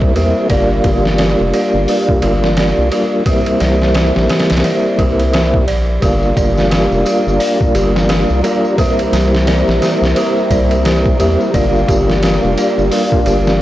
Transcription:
Already playing: analog synth bass C2, tonewheel organ G3 A#3 C4 E4, synth bell G4 D5
0.02 kick
0.15 analog synth bass E2, tonewheel organ G3 A#3 C4 E4, synth bell G4, ride
0.48 analog synth bass G1, tonewheel organ G3 A#3 D4, synth bell D5, kick, ride
0.53 tonewheel organ F4
0.84 analog synth bass G1, synth bell G4, kick, ride
1.05 snare
1.18 synth bell G4, snare, ride
1.40 analog synth bass F1
1.54 synth bell D5, ride
1.74 analog synth bass G1
1.88 synth bell G4, open hi-hat
2.09 kick
2.22 analog synth bass G1, synth bell G4, ride
2.44 snare
2.57 synth bell D5, snare, ride
2.78 analog synth bass C2
2.91 tonewheel organ G3 A#3 D4 F4, synth bell G4, ride
3.25 tonewheel organ G3 A#3 C4 E4, synth bell G4, kick, ride
3.46 ride
3.60 analog synth bass C2, synth bell D5, snare, ride
3.82 snare
3.94 synth bell G4, snare, ride
4.16 analog synth bass A#1, snare
4.29 synth bell G4, snare, ride
4.39 snare, ride
4.50 analog synth bass C2, snare, ride
4.57 snare, ride
4.64 synth bell D5, ride
4.98 analog synth bass C2, synth bell G4, kick, ride
5.19 ride
5.33 synth bell G4, snare, ride
5.54 kick
5.68 analog synth bass A#1, synth bell D5, ride
6.00 analog synth bass G1, tonewheel organ G3 A#3 D4, synth bell G4, string machine F5 A#5, kick, ride, tambourine
6.04 tonewheel organ F4, string machine G4 D5
6.23 tambourine
6.37 analog synth bass G1, synth bell D5, kick, ride, tambourine
6.57 snare, tambourine
6.71 synth bell G4, snare, ride, tambourine
6.92 analog synth bass F1, tambourine
7.05 synth bell G4, ride, tambourine
7.27 analog synth bass G1, tambourine
7.40 synth bell D5, open hi-hat, tambourine
7.61 kick, tambourine
7.75 analog synth bass G1, synth bell G4, ride, tambourine
7.96 snare, tambourine
8.09 synth bell G4, snare, ride, tambourine
8.30 analog synth bass C2, tambourine
8.43 tonewheel organ G3 A#3 D4 F4, synth bell D5, ride, tambourine
8.65 tambourine
8.76 tonewheel organ G3 A#3 C4, string machine G4 C5 E5, synth bell G4, kick, ride, tambourine
8.80 tonewheel organ E4
8.99 ride, tambourine
9.13 analog synth bass C2, synth bell G4, snare, ride, tambourine
9.34 snare, tambourine
9.47 synth bell D5, snare, ride, tambourine
9.68 analog synth bass A#1, snare, tambourine
9.82 synth bell G4, snare, ride, tambourine
10.02 analog synth bass C2, snare, tambourine
10.16 synth bell G4, ride, tambourine
10.38 tambourine
10.50 analog synth bass C2, synth bell D5, kick, ride, tambourine
10.71 ride, tambourine
10.85 synth bell G4, snare, ride, tambourine
11.06 kick, tambourine
11.19 analog synth bass E2, tonewheel organ G3 A#3 C4 E4, synth bell G4, ride, tambourine
11.41 tambourine
11.52 analog synth bass G1, tonewheel organ G3 A#3 D4, synth bell D5, string machine D5 F5, kick, ride, tambourine
11.56 tonewheel organ F4
11.76 tambourine
11.88 analog synth bass G1, synth bell G4, kick, ride, tambourine
12.10 snare, tambourine
12.23 synth bell G4, snare, ride, tambourine
12.44 analog synth bass F1, tambourine
12.57 synth bell D5, ride, tambourine
12.78 analog synth bass G1, tambourine
12.91 synth bell G4, open hi-hat, tambourine
13.12 kick, tambourine
13.26 analog synth bass G1, synth bell G4, ride, tambourine
13.47 snare, tambourine

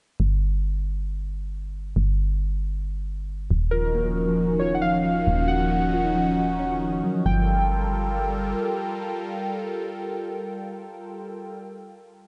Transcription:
0.20 fm bass G1
1.96 fm bass G1
3.51 fm bass D#1
3.71 analog synth pad D#3 C#4 D#4 F#4, synth pluck F3, synth keys A#4
3.95 synth pluck A#3
4.06 synth pluck F3
4.17 synth pluck F3
4.28 synth pluck F3
4.39 synth pluck A#3
4.59 synth pluck F4, synth keys C#5
4.72 synth pluck D#4, synth keys F#5
4.82 synth pluck F3, synth keys F5
4.94 synth pluck F3
5.05 synth pluck F3
5.27 fm bass D#1, synth pluck A#3
5.38 synth pluck F3
5.48 synth pluck F3, synth keys F#5
5.60 synth pluck F3
5.71 synth pluck A#3
5.93 synth pluck F4
6.04 synth pluck D#4
6.15 synth pluck F3
6.26 synth pluck F3
6.38 synth pluck F3
6.59 synth pluck C#4
6.70 synth pluck F3
6.82 synth pluck F3
6.93 synth pluck C#4
7.04 synth pluck F#3
7.15 synth pluck F3
7.26 fm bass G1, synth pluck F3, analog synth pad G3 F4 A4 A#4, synth keys G5

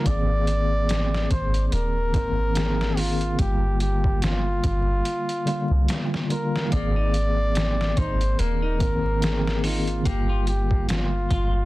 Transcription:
0.02 808-style bass G#1, tine electric piano D#3 A#3, kick, closed hi-hat
0.06 tine electric piano C4 G#4, muted trumpet D5
0.47 closed hi-hat
0.89 snare, closed hi-hat
1.14 snare
1.31 808-style bass G#1, muted trumpet C5, kick, closed hi-hat
1.54 closed hi-hat
1.67 muted trumpet C5
1.72 808-style bass D#1, muted trumpet A#4, closed hi-hat
2.12 808-style bass G#1, tine electric piano D#3 A#3 C4 A#4, kick, closed hi-hat
2.54 tine electric piano D#3 A#3 C4 G#4, snare, closed hi-hat
2.81 snare
2.97 muted trumpet F4, open hi-hat
3.21 closed hi-hat
3.36 808-style bass G1, tine electric piano D3 G3, muted trumpet G4, kick, closed hi-hat
3.40 tine electric piano A#3 F4
3.80 muted trumpet G4, closed hi-hat
4.04 kick
4.22 muted trumpet F4, snare, closed hi-hat
4.64 808-style bass G1, kick, closed hi-hat
5.05 closed hi-hat
5.29 closed hi-hat
5.45 tine electric piano D3 G3 A#3 F4, closed hi-hat
5.71 808-style bass C2
5.88 snare, closed hi-hat
6.14 snare
6.29 tine electric piano D3 G3 A#3 F4, muted trumpet A#4, closed hi-hat
6.56 snare
6.68 tine electric piano D#3 A#3
6.72 808-style bass G#1, clean electric guitar A#3, tine electric piano C4 G#4, muted trumpet D5, kick, closed hi-hat
6.96 clean electric guitar D#4
7.14 closed hi-hat
7.55 snare, closed hi-hat
7.81 snare
7.97 808-style bass G#1, clean electric guitar D#4, muted trumpet C5, kick, closed hi-hat
8.21 closed hi-hat
8.39 808-style bass D#1, clean electric guitar A#3, muted trumpet A#4, closed hi-hat
8.62 clean electric guitar D#4
8.79 808-style bass G#1, tine electric piano D#3 A#3 C4 A#4, kick, closed hi-hat
9.20 tine electric piano D#3 A#3 C4 G#4, snare, closed hi-hat
9.47 snare
9.64 clean electric guitar D#4, muted trumpet F4, open hi-hat
9.87 closed hi-hat
10.02 808-style bass G1, tine electric piano D3 G3, clean electric guitar A#3, kick, closed hi-hat
10.07 tine electric piano A#3 F4, muted trumpet G4
10.29 clean electric guitar F4
10.47 muted trumpet G4, closed hi-hat
10.71 kick
10.89 muted trumpet F4, snare, closed hi-hat
11.30 808-style bass G1, clean electric guitar F4, kick, closed hi-hat

